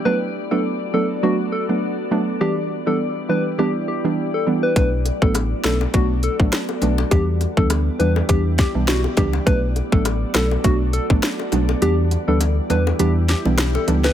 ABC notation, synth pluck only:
X:1
M:4/4
L:1/16
Q:"Swing 16ths" 1/4=102
K:Bm
V:1 name="Synth pluck"
[F,A,B,D]3 [F,A,B,D]3 [F,A,B,D]2 [F,A,B,D]3 [F,A,B,D]3 [F,A,B,D]2 | [E,G,B,D]3 [E,G,B,D]3 [E,G,B,D]2 [E,G,B,D]3 [E,G,B,D]3 [E,G,B,D]2 | [F,A,B,D]3 [F,A,B,D]3 [F,A,B,D]2 [F,A,B,D]3 [F,A,B,D]3 [F,A,B,D]2 | [E,G,B,D]3 [E,G,B,D]3 [E,G,B,D]2 [E,G,B,D]3 [E,G,B,D]3 [E,G,B,D]2 |
[F,A,B,D]3 [F,A,B,D]3 [F,A,B,D]2 [F,A,B,D]3 [F,A,B,D]3 [F,A,B,D]2 | [E,G,B,D]3 [E,G,B,D]3 [E,G,B,D]2 [E,G,B,D]3 [E,G,B,D]3 [E,G,B,D]2 |]